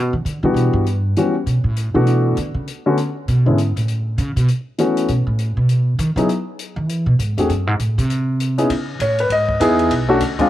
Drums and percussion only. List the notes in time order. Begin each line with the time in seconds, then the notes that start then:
0.26 closed hi-hat
0.56 closed hi-hat
0.86 closed hi-hat
1.16 closed hi-hat
1.47 closed hi-hat
1.76 closed hi-hat
2.07 closed hi-hat
2.37 closed hi-hat
2.67 closed hi-hat
2.97 closed hi-hat
3.28 closed hi-hat
3.58 closed hi-hat
3.77 closed hi-hat
3.88 closed hi-hat
4.18 closed hi-hat
4.37 closed hi-hat
4.48 closed hi-hat
4.78 closed hi-hat
4.97 closed hi-hat
5.08 closed hi-hat
5.39 closed hi-hat
5.69 closed hi-hat
5.99 closed hi-hat
6.17 closed hi-hat
6.29 closed hi-hat
6.59 closed hi-hat
6.89 closed hi-hat
7.19 closed hi-hat
7.38 closed hi-hat
7.49 closed hi-hat
7.79 closed hi-hat
7.98 closed hi-hat
8.10 closed hi-hat
8.40 closed hi-hat
8.58 closed hi-hat
8.70 kick, ride
9.00 kick, hi-hat pedal, ride
9.18 ride
9.30 kick, ride
9.49 kick
9.60 kick, hi-hat pedal, ride
9.79 ride
9.90 kick, ride
10.20 kick, hi-hat pedal, ride
10.39 kick, ride